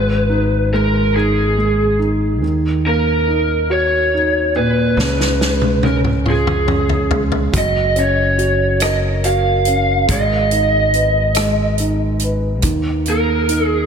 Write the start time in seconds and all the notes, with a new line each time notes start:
Already playing: G#1 G#3 B4
0.29 D#4
0.73 G#3 A#4
1.16 D#4 G#4
1.57 G#3
1.99 D#4
2.42 D#2 D#3
2.85 A#3 A#4
3.28 D#4
3.70 F#4 C#5
4.14 D#4
4.56 A#2 B4
4.97 C#2 C#3, snare
5.21 snare
5.41 G#3, snare
5.62 high tom
5.83 C#4 A#4, high tom
6.04 mid tom
6.25 F4, mid tom
6.30 G#4
6.47 mid tom
6.67 C#4, mid tom
6.89 floor tom
7.10 G#3, floor tom
7.32 floor tom
7.53 F#1 F#3, kick, closed hi-hat
7.58 D#5
7.96 C#4 C#5, closed hi-hat
8.38 F#4, closed hi-hat
8.80 A#4 D#5, cross-stick, closed hi-hat
9.24 F#4 F5, closed hi-hat
9.65 C#4, closed hi-hat
10.07 G#1 G#3 D#5, kick, closed hi-hat
10.51 D#4, closed hi-hat
10.94 B4, closed hi-hat
11.35 G#3, cross-stick, closed hi-hat
11.78 D#4, closed hi-hat
12.19 B4, closed hi-hat
12.62 D#2 D#3, kick, closed hi-hat
13.06 A#3, closed hi-hat
13.10 A#4
13.49 D#4, closed hi-hat
13.67 G#4